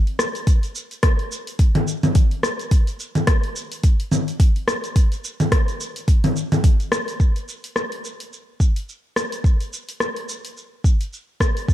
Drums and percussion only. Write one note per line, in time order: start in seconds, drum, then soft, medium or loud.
0.07 open hi-hat soft
0.19 cross-stick medium
0.19 shaker medium
0.35 open hi-hat soft
0.35 shaker soft
0.47 kick loud
0.47 open hi-hat medium
0.47 shaker soft
0.63 open hi-hat soft
0.63 shaker soft
0.75 shaker medium
0.91 open hi-hat soft
0.91 shaker soft
1.03 kick loud
1.03 cross-stick medium
1.03 open hi-hat medium
1.03 shaker soft
1.19 open hi-hat soft
1.32 shaker medium
1.47 open hi-hat soft
1.47 shaker soft
1.59 kick medium
1.59 open hi-hat medium
1.59 shaker soft
1.75 open hi-hat soft
1.75 low conga medium
1.88 shaker medium
2.03 open hi-hat soft
2.03 low conga medium
2.03 shaker soft
2.15 kick loud
2.15 open hi-hat medium
2.15 shaker soft
2.31 open hi-hat soft
2.43 cross-stick medium
2.43 shaker medium
2.59 open hi-hat soft
2.59 shaker soft
2.71 kick loud
2.71 open hi-hat medium
2.71 shaker soft
2.87 open hi-hat soft
2.87 shaker soft
3.00 shaker medium
3.15 open hi-hat soft
3.15 low conga medium
3.15 shaker soft
3.27 kick loud
3.27 cross-stick medium
3.27 open hi-hat medium
3.27 shaker soft
3.44 open hi-hat soft
3.56 shaker medium
3.72 open hi-hat soft
3.72 shaker soft
3.83 kick medium
3.83 open hi-hat medium
3.83 shaker soft
4.00 open hi-hat soft
4.12 low conga medium
4.12 shaker medium
4.28 open hi-hat soft
4.28 shaker soft
4.40 kick loud
4.40 open hi-hat medium
4.40 shaker soft
4.56 open hi-hat soft
4.68 cross-stick medium
4.68 shaker medium
4.84 open hi-hat soft
4.84 shaker soft
4.96 kick loud
4.96 open hi-hat medium
4.96 shaker soft
5.12 open hi-hat soft
5.12 shaker soft
5.24 shaker medium
5.40 open hi-hat soft
5.40 low conga medium
5.40 shaker soft
5.52 kick loud
5.52 cross-stick medium
5.52 open hi-hat medium
5.52 shaker soft
5.68 open hi-hat soft
5.68 shaker soft
5.81 shaker medium
5.96 open hi-hat soft
5.96 shaker soft
6.08 kick medium
6.08 open hi-hat medium
6.08 shaker soft
6.24 open hi-hat soft
6.24 low conga medium
6.24 shaker soft
6.36 shaker medium
6.52 open hi-hat soft
6.52 low conga medium
6.52 shaker soft
6.64 kick loud
6.64 open hi-hat medium
6.64 shaker soft
6.80 open hi-hat soft
6.80 shaker soft
6.92 cross-stick medium
6.92 shaker medium
7.08 open hi-hat soft
7.08 shaker soft
7.20 kick loud
7.20 shaker soft
7.36 open hi-hat soft
7.36 shaker soft
7.48 shaker medium
7.64 open hi-hat soft
7.64 shaker soft
7.76 cross-stick medium
7.76 shaker soft
7.92 open hi-hat soft
8.05 shaker medium
8.20 open hi-hat soft
8.20 shaker soft
8.33 shaker soft
8.60 kick medium
8.60 shaker medium
8.76 open hi-hat medium
8.76 shaker soft
8.89 shaker soft
9.16 cross-stick medium
9.16 shaker medium
9.32 open hi-hat soft
9.32 shaker soft
9.44 kick loud
9.44 shaker soft
9.61 open hi-hat soft
9.61 shaker soft
9.73 shaker medium
9.89 open hi-hat soft
9.89 shaker soft
10.00 cross-stick medium
10.00 shaker soft
10.16 open hi-hat soft
10.29 shaker medium
10.45 open hi-hat soft
10.45 shaker soft
10.57 shaker soft
10.84 kick loud
10.84 shaker medium
11.01 open hi-hat soft
11.01 shaker soft
11.13 shaker soft
11.40 kick medium
11.40 cross-stick medium
11.40 shaker medium
11.57 open hi-hat soft
11.57 shaker soft
11.68 kick loud
11.68 shaker soft